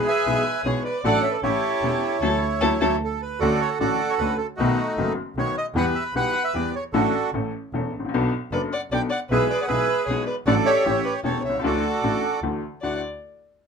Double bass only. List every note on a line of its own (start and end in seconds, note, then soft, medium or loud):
0.25 0.42 B1 medium
0.63 0.80 B1 medium
1.04 1.21 A1 medium
1.42 1.59 A1 medium
1.81 1.98 E1 medium
2.21 2.36 D2 medium
2.60 2.75 D2 medium
2.81 2.96 D2 medium
3.41 3.57 D2 medium
3.80 3.97 A1 medium
4.19 4.36 D2 medium
4.59 4.75 B1 medium
4.97 5.14 F#1 medium
5.35 5.52 B1 medium
5.74 5.91 E2 medium
6.13 6.30 B1 medium
6.54 6.70 E2 medium
6.93 7.10 A1 medium
7.33 7.49 A1 medium
7.73 7.89 E1 medium
7.94 8.12 A1 soft
8.13 8.29 B1 medium
8.52 8.68 F#1 medium
8.90 9.07 B1 medium
9.30 9.46 B1 medium
9.68 9.85 B1 medium
10.07 10.24 B1 medium
10.46 10.63 A1 medium
10.86 11.02 A1 medium
11.24 11.41 E1 medium
11.44 11.62 C2 soft
11.63 11.80 D2 medium
12.02 12.19 A1 medium
12.42 12.59 D2 medium
12.83 12.99 D2 soft